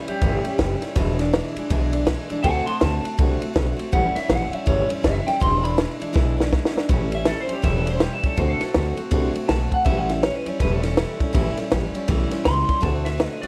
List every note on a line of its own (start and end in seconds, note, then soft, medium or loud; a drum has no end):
0.08 0.22 G3 soft
0.08 0.22 C#4 medium
0.08 0.22 E4 medium
0.08 0.93 G4 loud
0.08 muted upright bass stroke medium
0.08 ride medium
0.21 0.41 G1 medium
0.21 0.45 A2 medium
0.21 0.45 E3 medium
0.21 0.45 G3 medium
0.21 0.45 C#4 medium
0.21 0.44 E4 medium
0.21 kick loud
0.21 ride medium
0.45 0.58 G3 soft
0.45 0.58 C#4 medium
0.45 0.59 E4 soft
0.45 ride medium
0.58 0.78 F#1 medium
0.58 0.82 E3 medium
0.58 0.82 G3 medium
0.58 0.81 C#4 medium
0.58 0.79 E4 medium
0.58 kick medium
0.58 snare loud
0.58 ride medium
0.81 0.96 G3 medium
0.81 0.96 C#4 medium
0.81 0.95 E4 medium
0.81 muted upright bass stroke medium
0.81 snare soft
0.81 ride medium
0.96 1.38 E1 medium
0.96 1.19 E2 medium
0.96 1.19 B2 loud
0.96 1.19 E3 loud
0.96 1.19 G#3 loud
0.96 1.19 D4 medium
0.96 1.18 E4 loud
0.96 kick loud
0.96 snare soft
0.96 ride medium
1.19 1.32 E3 soft
1.19 1.33 G#3 medium
1.19 1.33 D4 medium
1.19 1.33 E4 medium
1.19 snare soft
1.19 ride medium
1.33 1.56 E3 medium
1.33 1.56 G#3 medium
1.33 1.56 D4 medium
1.33 1.55 E4 medium
1.33 snare loud
1.33 ride medium
1.56 1.69 E3 medium
1.56 1.70 G#3 medium
1.56 1.70 D4 medium
1.56 1.70 E4 medium
1.56 muted upright bass stroke medium
1.56 ride medium
1.70 2.12 B1 medium
1.70 1.93 E2 medium
1.70 1.93 B2 medium
1.70 1.93 E3 loud
1.70 1.93 G#3 loud
1.70 1.92 D4 loud
1.70 1.91 E4 medium
1.70 kick loud
1.70 ride medium
1.92 2.04 E3 soft
1.92 2.05 G#3 soft
1.92 2.06 D4 medium
1.92 2.06 E4 medium
1.92 ride medium
2.05 2.29 E3 medium
2.05 2.30 G#3 medium
2.05 2.29 D4 medium
2.05 2.28 E4 medium
2.05 kick medium
2.05 snare loud
2.05 ride medium
2.29 2.43 E3 medium
2.29 2.44 G#3 medium
2.29 2.44 D4 medium
2.29 2.44 E4 medium
2.29 muted upright bass stroke medium
2.29 ride medium
2.43 2.61 D2 loud
2.43 2.67 D3 medium
2.43 2.67 A3 medium
2.43 2.66 C4 medium
2.43 2.66 F#4 loud
2.43 2.66 F#5 loud
2.43 2.65 A5 loud
2.43 kick loud
2.43 ride medium
2.66 2.80 A3 soft
2.66 2.80 C4 medium
2.66 2.81 F#4 medium
2.66 2.80 A5 medium
2.66 2.81 C6 loud
2.66 muted upright bass stroke medium
2.66 ride medium
2.80 3.01 D2 medium
2.80 3.04 D3 medium
2.80 3.03 A3 medium
2.80 3.03 C4 medium
2.80 3.01 F#4 medium
2.80 3.17 A5 loud
2.80 snare loud
2.80 ride medium
3.02 3.17 A3 soft
3.02 3.18 C4 medium
3.02 3.17 F#4 medium
3.02 muted upright bass stroke medium
3.02 ride medium
3.18 3.38 C2 medium
3.18 3.41 D3 medium
3.18 3.41 A3 medium
3.18 3.41 C4 medium
3.18 3.39 F#4 medium
3.18 kick loud
3.18 ride medium
3.40 3.54 A3 soft
3.40 3.54 C4 medium
3.40 3.55 F#4 medium
3.40 muted upright bass stroke medium
3.40 ride medium
3.54 3.75 B1 medium
3.54 3.78 D3 medium
3.54 3.78 A3 medium
3.54 3.77 C4 medium
3.54 3.75 F#4 medium
3.54 kick medium
3.54 snare loud
3.54 ride medium
3.77 3.92 A3 medium
3.77 3.92 C4 medium
3.77 3.92 F#4 medium
3.77 ride medium
3.92 4.09 A1 loud
3.92 4.15 A2 medium
3.92 4.16 E3 medium
3.92 4.16 G3 medium
3.92 4.16 C#4 medium
3.92 4.14 E4 medium
3.92 4.15 F#5 loud
3.92 kick loud
3.92 ride medium
4.15 4.28 G3 soft
4.15 4.29 C#4 medium
4.15 4.29 E4 medium
4.15 4.29 E5 loud
4.15 muted upright bass stroke medium
4.15 snare soft
4.15 ride medium
4.28 4.49 A1 medium
4.28 4.52 E3 medium
4.28 4.53 G3 medium
4.28 4.52 C#4 medium
4.28 4.50 E4 medium
4.28 4.54 F#5 loud
4.28 snare loud
4.28 ride medium
4.52 4.65 G3 soft
4.52 4.65 C#4 medium
4.52 4.66 E4 medium
4.52 4.67 E5 loud
4.52 muted upright bass stroke medium
4.52 ride medium
4.66 4.86 G1 medium
4.66 4.89 A2 medium
4.66 4.89 E3 medium
4.66 4.89 G3 medium
4.66 4.89 C#4 loud
4.66 4.88 E4 medium
4.66 4.89 C#5 medium
4.66 kick loud
4.66 ride medium
4.89 5.02 G3 soft
4.89 5.02 C#4 medium
4.89 5.03 E4 medium
4.89 muted upright bass stroke medium
4.89 ride medium
5.02 5.23 F#1 medium
5.02 5.26 E3 medium
5.02 5.26 G3 medium
5.02 5.25 C#4 medium
5.02 5.24 E4 medium
5.02 5.27 E5 medium
5.02 kick medium
5.02 snare loud
5.02 ride medium
5.25 5.41 G3 soft
5.25 5.41 C#4 soft
5.25 5.40 E4 medium
5.25 5.40 G5 loud
5.25 snare soft
5.25 ride medium
5.40 5.83 E1 loud
5.40 5.63 E2 medium
5.40 5.64 B2 medium
5.40 5.64 E3 medium
5.40 5.63 G#3 medium
5.40 5.62 D4 medium
5.40 5.62 E4 medium
5.40 5.63 C6 medium
5.40 kick loud
5.40 ride medium
5.63 5.76 E3 soft
5.63 5.76 G#3 soft
5.63 5.77 D4 medium
5.63 5.77 E4 medium
5.63 5.78 B5 loud
5.63 ride medium
5.77 6.00 E3 medium
5.77 6.00 G#3 medium
5.77 5.99 D4 medium
5.77 5.99 E4 medium
5.77 snare loud
5.77 ride medium
6.00 6.12 E3 medium
6.00 6.13 G#3 medium
6.00 6.13 D4 medium
6.00 6.13 E4 medium
6.00 muted upright bass stroke medium
6.00 ride medium
6.13 6.58 B1 medium
6.13 6.37 E2 loud
6.13 6.37 B2 medium
6.13 6.37 E3 medium
6.13 6.37 G#3 medium
6.13 6.37 D4 medium
6.13 6.35 E4 loud
6.13 kick loud
6.13 snare medium
6.37 6.50 E3 soft
6.37 6.51 G#3 soft
6.37 6.52 D4 medium
6.37 6.51 E4 medium
6.37 snare medium
6.51 6.75 E3 medium
6.51 6.74 G#3 medium
6.51 6.74 D4 medium
6.51 6.73 E4 medium
6.51 kick medium
6.51 snare medium
6.65 snare loud
6.74 6.88 E3 medium
6.74 6.89 G#3 medium
6.74 6.89 D4 medium
6.74 6.89 E4 medium
6.74 muted upright bass stroke medium
6.74 snare medium
6.89 7.32 A1 loud
6.89 7.12 A2 medium
6.89 7.13 E3 medium
6.89 7.13 G3 medium
6.89 7.11 C#4 loud
6.89 7.10 E4 loud
6.89 kick loud
6.89 ride medium
7.11 7.25 G3 soft
7.11 7.26 C#4 medium
7.11 7.26 E4 medium
7.11 ride medium
7.15 7.26 E5 medium
7.25 7.49 E3 medium
7.25 7.49 G3 medium
7.25 7.47 C#4 medium
7.25 7.46 E4 medium
7.25 7.39 A4 medium
7.25 snare loud
7.25 ride medium
7.41 7.52 C5 loud
7.48 7.62 G3 soft
7.48 7.62 C#4 medium
7.48 7.63 E4 medium
7.48 muted upright bass stroke medium
7.48 ride medium
7.53 7.64 G4 medium
7.62 8.06 E1 medium
7.62 7.86 A2 medium
7.62 7.86 E3 medium
7.62 7.87 G3 medium
7.62 7.86 C#4 medium
7.62 7.84 E4 medium
7.62 7.76 E5 medium
7.62 kick loud
7.62 snare soft
7.62 ride medium
7.78 7.89 A4 medium
7.86 7.99 G3 soft
7.86 8.00 C#4 soft
7.86 8.00 E4 medium
7.86 ride medium
7.90 8.01 C5 medium
8.00 8.23 E3 medium
8.00 8.24 G3 medium
8.00 8.23 C#4 medium
8.00 8.22 E4 medium
8.00 8.13 G4 medium
8.00 snare loud
8.00 ride medium
8.13 8.25 E5 medium
8.23 8.37 G3 medium
8.23 8.37 C#4 soft
8.23 8.38 E4 medium
8.23 8.38 A4 medium
8.23 muted upright bass stroke medium
8.23 kick medium
8.23 ride medium
8.37 8.54 D2 medium
8.37 8.60 D3 medium
8.37 8.61 A3 medium
8.37 8.60 C4 medium
8.37 8.59 F#4 medium
8.37 8.50 C5 medium
8.37 kick loud
8.37 ride medium
8.50 8.61 A4 medium
8.60 8.73 A3 soft
8.60 8.74 C4 soft
8.60 8.74 F#4 medium
8.60 8.98 A4 loud
8.60 muted upright bass stroke medium
8.60 snare soft
8.60 ride medium
8.74 8.95 D2 loud
8.74 8.97 D3 medium
8.74 8.98 A3 medium
8.74 8.96 C4 medium
8.74 8.95 F#4 medium
8.74 snare loud
8.74 ride medium
8.97 9.11 A3 medium
8.97 9.11 C4 medium
8.97 9.11 F#4 medium
8.97 muted upright bass stroke medium
8.97 ride medium
9.11 9.31 C2 medium
9.11 9.34 D3 loud
9.11 9.35 A3 medium
9.11 9.33 C4 loud
9.11 9.32 F#4 loud
9.11 kick loud
9.11 ride medium
9.33 9.47 A3 soft
9.33 9.49 C4 medium
9.33 9.48 F#4 medium
9.33 muted upright bass stroke medium
9.33 ride medium
9.48 9.68 B1 medium
9.48 9.72 D3 medium
9.48 9.72 A3 medium
9.48 9.71 C4 medium
9.48 9.70 F#4 medium
9.48 9.73 A5 loud
9.48 snare loud
9.48 ride medium
9.71 9.85 A3 soft
9.71 9.85 C4 medium
9.71 9.86 F#4 medium
9.71 9.84 F#5 medium
9.71 kick medium
9.71 ride medium
9.85 10.28 A1 medium
9.85 10.08 A2 medium
9.85 10.09 E3 medium
9.85 10.09 G3 medium
9.85 10.09 C#4 medium
9.85 10.08 E4 medium
9.85 9.97 E5 loud
9.85 kick loud
9.85 ride medium
9.97 10.10 F#5 medium
10.09 10.22 G3 soft
10.09 10.23 C#4 soft
10.09 10.23 E4 medium
10.09 10.22 E5 loud
10.09 snare soft
10.09 ride medium
10.23 10.46 E3 medium
10.23 10.46 G3 medium
10.23 10.46 C#4 medium
10.23 10.45 E4 medium
10.23 10.35 C#5 medium
10.23 snare loud
10.23 ride medium
10.35 10.47 B4 medium
10.46 10.59 G3 medium
10.46 10.59 C#4 medium
10.46 10.60 E4 medium
10.46 10.59 C#5 medium
10.46 muted upright bass stroke medium
10.46 ride medium
10.60 11.02 E1 medium
10.60 10.83 A2 medium
10.60 10.83 E3 medium
10.60 10.84 G3 medium
10.60 10.83 C#4 medium
10.60 10.82 E4 medium
10.60 10.72 B4 medium
10.60 kick loud
10.60 snare soft
10.60 ride medium
10.73 10.84 A4 medium
10.83 10.97 G3 soft
10.83 10.97 C#4 soft
10.83 10.97 E4 medium
10.83 11.93 A4 medium
10.83 snare soft
10.83 ride medium
10.97 11.20 E3 medium
10.97 11.21 G3 medium
10.97 11.20 C#4 medium
10.97 11.19 E4 medium
10.97 snare loud
10.97 ride medium
11.20 11.33 G3 soft
11.20 11.32 C#4 medium
11.20 11.34 E4 medium
11.20 muted upright bass stroke medium
11.20 kick medium
11.20 snare soft
11.20 ride medium
11.33 11.51 A1 medium
11.33 11.57 A2 medium
11.33 11.57 E3 loud
11.33 11.57 G3 medium
11.33 11.57 C#4 medium
11.33 11.56 E4 loud
11.33 kick loud
11.33 ride medium
11.57 11.70 G3 medium
11.57 11.71 C#4 medium
11.57 11.71 E4 medium
11.57 muted upright bass stroke medium
11.57 snare soft
11.57 ride medium
11.70 11.91 A1 medium
11.70 11.94 E3 medium
11.70 11.94 G3 medium
11.70 11.94 C#4 medium
11.70 11.93 E4 medium
11.70 snare loud
11.70 ride medium
11.94 12.07 G3 medium
11.94 12.08 C#4 medium
11.94 12.08 E4 medium
11.94 muted upright bass stroke medium
11.94 ride medium
12.08 12.28 B1 medium
12.08 12.31 A2 medium
12.08 12.32 E3 loud
12.08 12.31 G3 medium
12.08 12.30 C#4 medium
12.08 12.29 E4 loud
12.08 kick loud
12.08 snare soft
12.08 ride medium
12.31 12.43 G3 medium
12.31 12.44 C#4 medium
12.31 12.45 E4 medium
12.31 snare soft
12.31 ride medium
12.44 12.65 C#2 medium
12.44 12.68 E3 medium
12.44 12.67 G3 medium
12.44 12.67 C#4 medium
12.44 12.66 E4 medium
12.44 12.81 C6 loud
12.44 snare loud
12.44 ride medium
12.67 12.80 G3 soft
12.67 12.81 C#4 soft
12.67 12.81 E4 medium
12.67 kick medium
12.67 snare soft
12.67 ride medium
12.80 13.25 D2 medium
12.80 13.05 D3 medium
12.80 13.05 A3 medium
12.80 13.05 C4 loud
12.80 13.04 F#4 medium
12.80 13.05 A5 medium
12.80 kick loud
12.80 ride medium
13.05 13.18 A3 soft
13.05 13.18 C4 medium
13.05 13.19 F#4 medium
13.05 13.20 E5 medium
13.05 snare soft
13.05 ride medium
13.18 13.42 D3 medium
13.18 13.42 A3 medium
13.18 13.42 C4 medium
13.18 13.41 F#4 medium
13.18 13.42 D#5 medium
13.18 snare loud
13.18 ride medium
13.42 13.47 C4 medium
13.42 13.47 F#4 medium
13.42 13.47 D5 loud
13.42 muted upright bass stroke medium
13.42 ride medium